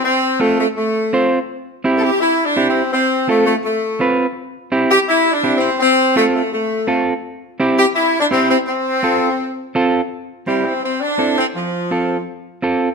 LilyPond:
<<
  \new Staff \with { instrumentName = "Clean electric guitar" } { \time 4/4 \key c \major \tempo 4 = 167 r4 <c' f' a'>8 r4. <c' f' c''>8 r8 | r4 <c' e' g'>8 r4. <c' e' g'>8 r8 | r4 <c' f' a'>8 r4. <c' f' b'>8 r8 | r4 <c' e' g'>8 r4. <c' e' g'>8 r8 |
r4 <c' f' a'>8 r4. <c' f' a'>8 r8 | r4 <c' e' g'>8 r4. <c' e' g'>8 r8 | r4 <c' f' a'>8 r4. <c' f' a'>8 r8 | r4 <c' e' g'>8 r4. <c' e' a'>8 r8 |
r4 <c' f' a'>8 r4. <c' f' a'>8 r8 | }
  \new Staff \with { instrumentName = "Saxophone section" } { \time 4/4 \key c \major c'4 a8 a8 a4. r8 | r4 r16. a'32 g'8 \tuplet 3/2 { e'4 d'8~ d'8 c'4 } | c'4 a8 a8 a4. r8 | r4. g'8 \tuplet 3/2 { e'4 d'8~ d'8 c'4 } |
c'4 a8 a8 a4. r8 | r4. g'8 \tuplet 3/2 { e'4 d'8 } c'8 c'8 | c'2. r4 | r4 g8 c'8 c'8 d'4 c'8 |
f2 r2 | }
>>